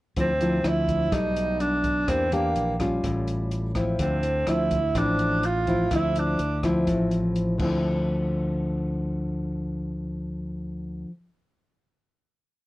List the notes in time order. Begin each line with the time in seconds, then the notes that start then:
0.17 D2 D3 F3 C4 E4, kick, closed hi-hat
0.41 F3 C4 E4, closed hi-hat
0.63 D2 F3 C4 E4, cross-stick, closed hi-hat
0.68 E4
0.88 kick, closed hi-hat
1.12 B1 B2 G3 A3 D#4, kick, cross-stick, closed hi-hat
1.36 closed hi-hat
1.60 D4, closed hi-hat
1.84 kick, closed hi-hat
2.08 E2 E3 A#3 C4 D4 G4, kick, cross-stick, closed hi-hat
2.32 A#3 D4 G4, closed hi-hat
2.55 A#1, closed hi-hat
2.80 G3 C#4 F4, kick, cross-stick, closed hi-hat
3.03 A1 A2, kick, closed hi-hat
3.27 closed hi-hat
3.51 closed hi-hat
3.75 F3 C4 E4, kick, cross-stick, closed hi-hat
3.99 D2 D3 C4, kick, closed hi-hat
4.23 closed hi-hat
4.47 D2 F3 C4 E4, cross-stick, closed hi-hat
4.71 kick, closed hi-hat
4.95 A1 A2 F3 C4 D4 E4, kick, cross-stick, closed hi-hat
5.19 closed hi-hat
5.43 F4, closed hi-hat
5.67 F3 C4 E4, kick, closed hi-hat
5.91 D2 D3 F3 C4 E4, kick, cross-stick, closed hi-hat
5.96 E4
6.16 D4, closed hi-hat
6.39 D2, closed hi-hat
6.63 F3 C4 E4, kick, cross-stick, closed hi-hat
6.87 A1 A2, kick, closed hi-hat
7.11 closed hi-hat
7.36 closed hi-hat
7.58 D2 D3 F3, kick, crash
7.62 C4 E4